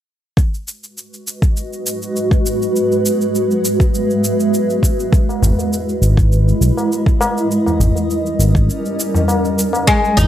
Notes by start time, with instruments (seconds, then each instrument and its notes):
0.37 ambient pad G#3, kick, shaker
0.54 shaker
0.66 ambient pad F#4, shaker
0.73 ambient pad B4
0.84 shaker
0.98 ambient pad D#5, shaker
1.14 shaker
1.27 shaker
1.42 kick, shaker
1.57 shaker
1.73 shaker
1.86 shaker
2.02 shaker
2.16 shaker
2.31 kick, shaker
2.46 shaker
2.62 shaker
2.76 shaker
2.92 shaker
3.06 shaker
3.21 shaker
3.35 shaker
3.51 ambient pad E5, shaker
3.65 shaker
3.80 kick, shaker
3.94 shaker
4.10 shaker
4.24 shaker
4.40 shaker
4.54 shaker
4.70 shaker
4.83 kick, shaker
5.00 shaker
5.13 kick, shaker
5.28 ambient pad E4, tabla na, shaker
5.42 analog synth bass G#1, tabla ge, shaker
5.59 tabla tin, shaker
5.73 shaker
5.89 ambient pad D#5, shaker
6.02 analog synth bass G#1, shaker
6.17 kick, shaker
6.32 shaker
6.48 shaker
6.61 analog synth bass B1, shaker
6.77 tabla na, shaker
6.92 shaker
7.06 kick, shaker
7.20 tabla na, tabla tin, shaker
7.38 shaker
7.51 ambient pad G3, shaker
7.62 ambient pad A#4
7.66 tabla na, tabla ge, shaker
7.79 analog synth bass G#1, ambient pad C#4, tabla ge, shaker
7.96 tabla tin, shaker
8.10 shaker
8.26 shaker
8.39 analog synth bass G#1, tabla tin, shaker
8.55 kick, shaker
8.70 shaker
8.85 shaker
9.00 shaker
9.15 tabla tin, tabla ge, shaker
9.28 tabla na, shaker
9.45 shaker
9.59 shaker
9.73 tabla na, shaker
9.87 oud G#3, kick, shaker
10.04 shaker
10.17 analog synth bass G#1, oud D#4, tabla ge, shaker